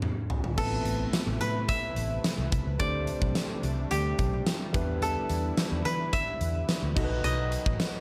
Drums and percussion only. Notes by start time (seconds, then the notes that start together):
0.02 mid tom
0.30 floor tom
0.44 floor tom
0.58 kick, crash
0.85 closed hi-hat
1.13 snare, closed hi-hat, tambourine
1.41 closed hi-hat
1.69 kick, closed hi-hat
1.96 closed hi-hat
2.24 snare, closed hi-hat, tambourine
2.52 kick, closed hi-hat
2.80 kick, closed hi-hat
3.07 closed hi-hat
3.22 kick
3.35 snare, closed hi-hat, tambourine
3.63 closed hi-hat
3.91 closed hi-hat
4.19 kick, closed hi-hat
4.46 snare, closed hi-hat, tambourine
4.74 kick, closed hi-hat
5.02 closed hi-hat
5.29 closed hi-hat
5.57 snare, closed hi-hat, tambourine
5.85 closed hi-hat
6.13 kick, closed hi-hat
6.41 closed hi-hat
6.69 snare, closed hi-hat, tambourine
6.96 kick, crash
7.24 closed hi-hat
7.52 closed hi-hat
7.66 kick
7.80 snare, closed hi-hat, tambourine